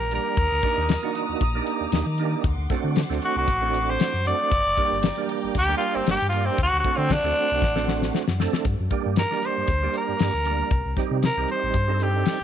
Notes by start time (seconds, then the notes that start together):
Already playing: A#4
0.00 A#1
0.11 G3 A#3 D4 G4 A#4, closed hi-hat
0.37 D#2 A#5 D6 D#6, kick, closed hi-hat
0.52 D2
0.63 A#3 D4 D#4 G4, kick, closed hi-hat
0.77 D#2
0.89 snare, closed hi-hat, tambourine
1.03 A#3 D4 D#4 F#4
1.15 closed hi-hat
1.29 D#2
1.41 A#1, kick, closed hi-hat
1.55 A#3 D4 D#4 G4
1.67 closed hi-hat
1.80 D#2
1.92 D#2, snare, closed hi-hat, tambourine
2.06 D#3
2.18 A#3 D4 D#4 G4, closed hi-hat
2.44 D2 F#5 C6, kick, closed hi-hat
2.58 D2
2.70 A3 C4 D4 F#4, kick, snare, closed hi-hat
2.84 D3
2.96 snare, closed hi-hat, tambourine
3.10 D2 A3 C4 D4 F#4, snare
3.22 F#4, closed hi-hat
3.36 C2 F#4
3.48 A1, kick, closed hi-hat
3.61 A3 C4 D4 F#4
3.74 closed hi-hat
3.90 C5
4.00 snare, closed hi-hat, tambourine
4.13 F#2
4.26 A3 C4 D4 F#4 D5, closed hi-hat
4.51 G1 G5 A#5, kick, closed hi-hat
4.66 F#1
4.77 G3 A#3 D4 G4, kick, closed hi-hat
4.91 G1
5.03 snare, closed hi-hat, tambourine
5.17 G3 A#3 D4 G4
5.29 closed hi-hat
5.43 G1
5.55 D2 G4, kick, closed hi-hat
5.68 G3 A#3 D4 G4
5.77 F4, closed hi-hat
5.95 G1 C4
6.07 G1 G4, snare, closed hi-hat, tambourine
6.22 G2
6.29 G3 A#3 F4, closed hi-hat
6.33 D4 G4
6.46 C4
6.58 D2 F#5 C6, kick, closed hi-hat
6.63 F#4
6.73 D2
6.80 F#4
6.84 A3 C4 D4 F#4, kick, closed hi-hat
6.97 D3 C4
7.10 D4, kick, snare, closed hi-hat, tambourine
7.24 D2 A3 C4 D4 F#4
7.36 closed hi-hat
7.51 C2
7.62 A1, kick, snare
7.75 A3 C4 D4 F#4, snare
7.88 snare
8.02 snare
8.15 snare
8.28 F#2, snare
8.40 A3 C4 D4 A4, snare
8.53 snare
8.65 G2, kick, closed hi-hat
8.80 F#2
8.91 G3 A#3 D4 G4, kick, closed hi-hat
9.06 G2
9.16 A#4, snare, closed hi-hat, tambourine
9.31 G3 A#3 D4 G4, snare
9.42 C5, closed hi-hat
9.58 G2
9.68 D2, kick, closed hi-hat
9.83 G3 A#3 D4 G4
9.94 A#4, closed hi-hat
10.09 G2
10.19 G2, snare, closed hi-hat, tambourine
10.34 D2
10.45 G3 A#3 D4 A#4, closed hi-hat
10.71 C2, kick, closed hi-hat
10.85 C2
10.97 G3 C4 D#4 G4, kick, snare, closed hi-hat
11.11 C3
11.23 A#4, snare, closed hi-hat, tambourine
11.37 C2 G3 C4 D#4 G4
11.48 C5, closed hi-hat
11.63 A1
11.74 G2, kick, closed hi-hat
11.88 G3 C4 D#4 A4
12.00 G4, closed hi-hat
12.26 snare, closed hi-hat, tambourine